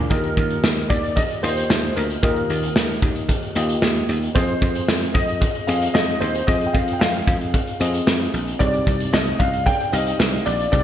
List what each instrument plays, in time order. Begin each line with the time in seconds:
Already playing: string machine D3, fm electric piano D4 F4 G#4 A#4 D5
0.10 slap bass D#2, fm electric piano D#3 A#3 F4 G4 D#5, grand piano A#4, kick, closed hi-hat, cowbell
0.24 closed hi-hat
0.37 slap bass D#2, kick, closed hi-hat
0.50 closed hi-hat
0.64 slap bass D#2, snare, cowbell
0.77 closed hi-hat
0.90 slap bass D#2, grand piano D5, kick, closed hi-hat
1.04 closed hi-hat
1.16 grand piano D#5, kick, closed hi-hat, cowbell
1.30 closed hi-hat
1.43 slap bass D#2, fm electric piano A#3 F4 G4 D#5, grand piano C5, closed hi-hat
1.57 closed hi-hat
1.70 slap bass D#2, snare, cowbell
1.83 closed hi-hat
1.96 slap bass D2, grand piano A#4, closed hi-hat
2.10 closed hi-hat
2.23 slap bass D#2, fm electric piano D#3 A#3 F4 G4 D#5, grand piano A#4, kick, closed hi-hat, cowbell
2.36 closed hi-hat
2.50 slap bass D#2, closed hi-hat
2.63 closed hi-hat
2.76 slap bass D#2, snare, cowbell
2.89 closed hi-hat
3.02 slap bass D#2, kick, closed hi-hat
3.16 closed hi-hat
3.29 kick, closed hi-hat, cowbell
3.42 closed hi-hat
3.55 slap bass D#2, fm electric piano A#3 F4 G4 D#5, closed hi-hat
3.69 closed hi-hat
3.82 slap bass D#2, snare, cowbell
3.95 closed hi-hat
4.09 slap bass D#2, closed hi-hat
4.22 closed hi-hat
4.35 slap bass F2, fm electric piano C4 F4 G#4 D#5, grand piano C5, kick, closed hi-hat, cowbell
4.48 closed hi-hat
4.62 slap bass F2, kick, closed hi-hat
4.75 closed hi-hat
4.88 slap bass F2, snare, cowbell
5.02 closed hi-hat
5.14 slap bass F2, grand piano D#5, kick, closed hi-hat
5.28 closed hi-hat
5.41 kick, closed hi-hat, cowbell
5.55 closed hi-hat
5.67 slap bass F2, fm electric piano C4 F4 G#4 D#5, grand piano F5, closed hi-hat
5.82 closed hi-hat
5.94 slap bass F2, grand piano D#5, snare, cowbell
6.08 closed hi-hat
6.20 slap bass D#2, grand piano C5, closed hi-hat
6.35 closed hi-hat
6.47 slap bass F2, fm electric piano C4 F4 G#4 D#5, grand piano D#5, kick, closed hi-hat, cowbell
6.61 closed hi-hat
6.66 grand piano G5
6.73 slap bass F2, grand piano F5, kick, closed hi-hat
6.88 closed hi-hat
6.93 grand piano G5
6.99 slap bass F2, grand piano F5, snare, cowbell
7.15 closed hi-hat
7.27 slap bass F2, kick, closed hi-hat
7.41 closed hi-hat
7.54 kick, closed hi-hat, cowbell
7.68 closed hi-hat
7.80 slap bass F2, fm electric piano C4 F4 G#4 D#5, closed hi-hat
7.94 closed hi-hat
8.07 slap bass F2, snare, cowbell
8.21 closed hi-hat
8.34 slap bass A#1, closed hi-hat
8.47 closed hi-hat
8.59 slap bass C2, fm electric piano C3 C4 D#4 G4 C#5, grand piano D5, kick, closed hi-hat, cowbell
8.67 fm electric piano D5
8.74 closed hi-hat
8.87 slap bass C2, kick, closed hi-hat
9.00 closed hi-hat
9.13 slap bass C2, grand piano D#5, snare, cowbell
9.27 closed hi-hat
9.39 slap bass C2, grand piano F5, kick, closed hi-hat
9.54 closed hi-hat
9.66 grand piano G5, kick, closed hi-hat, cowbell
9.80 closed hi-hat
9.92 slap bass C2, fm electric piano C4 D#4 G4 F5, grand piano D#5, closed hi-hat
10.07 closed hi-hat
10.19 slap bass C2, snare, cowbell
10.33 closed hi-hat
10.46 slap bass A#1, grand piano D5, closed hi-hat
10.59 closed hi-hat
10.72 slap bass C2, fm electric piano C3 C4 D#4 G4 D5, grand piano D5, kick, closed hi-hat, cowbell